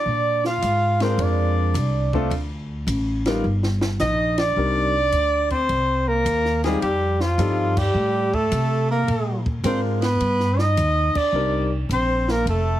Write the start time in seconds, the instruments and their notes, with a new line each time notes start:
Already playing: tenor saxophone D4, trumpet D5
0.06 upright bass A#2
0.44 tenor saxophone F4, trumpet F5, snare
0.62 upright bass G#2, hi-hat pedal, ride
1.00 grand piano G#3 C4 D4 F4 A#4, tenor saxophone C4, trumpet C5, snare, ride
1.18 upright bass F2, tenor saxophone D4, ride
1.23 trumpet D5
1.74 upright bass C2, hi-hat pedal, ride
2.13 grand piano A3 C4 D4 F4 A4, kick
2.30 upright bass D2, ride
2.87 upright bass A1, hi-hat pedal, ride
3.25 grand piano G3 B3 D#4 F4 A#4, snare, ride
3.44 upright bass G1
3.63 snare
3.81 snare
3.99 upright bass A#1, tenor saxophone D#4, trumpet D#5, snare, hi-hat pedal
4.38 tenor saxophone D4, trumpet D5, snare, ride
4.56 upright bass C2, grand piano G3 C4 D4 D#4 A#4
5.12 upright bass D2, hi-hat pedal, ride
5.50 tenor saxophone C4, trumpet C5, kick, ride
5.69 upright bass C2, ride
6.08 tenor saxophone A#3, trumpet A#4
6.25 upright bass D#2, hi-hat pedal, ride
6.45 snare
6.64 grand piano G3 C4 D#4 F4 G4, tenor saxophone G#3, trumpet G#4, snare, ride
6.82 upright bass F2, tenor saxophone G3, trumpet G4, ride
7.20 tenor saxophone F3, trumpet F4, snare
7.38 upright bass G2, grand piano G3 C4 D#4 F4 A4, hi-hat pedal, ride
7.77 tenor saxophone G3, trumpet G4, kick, crash
7.94 upright bass A2
8.34 tenor saxophone A3, trumpet A4, kick
8.51 upright bass C3, hi-hat pedal, ride
8.91 tenor saxophone A#3, trumpet A#4
9.08 upright bass A#2, ride
9.46 kick
9.64 upright bass G#2, grand piano G#3 C4 D4 F4 A#4, tenor saxophone C4, trumpet C5, hi-hat pedal, ride
10.01 tenor saxophone B3, trumpet B4, snare, ride
10.20 upright bass G2, ride
10.40 snare
10.59 tenor saxophone D#4, trumpet D#5, snare
10.77 upright bass D#2, hi-hat pedal, ride
11.15 tenor saxophone D4, trumpet D5, muted upright bass stroke, kick, crash
11.32 upright bass C2, grand piano G3 C4 D4 D#4 A#4
11.89 upright bass A#1, tenor saxophone C4, trumpet C5, hi-hat pedal, ride
12.28 tenor saxophone A#3, trumpet A#4, snare
12.45 upright bass F1, trumpet A4, ride
12.50 tenor saxophone A3